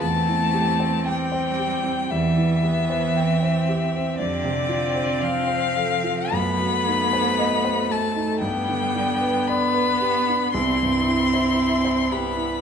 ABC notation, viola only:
X:1
M:4/4
L:1/8
Q:1/4=57
K:C
V:1 name="Viola"
C4 G, B, C2 | C4 A,4 | B,4 E4 |]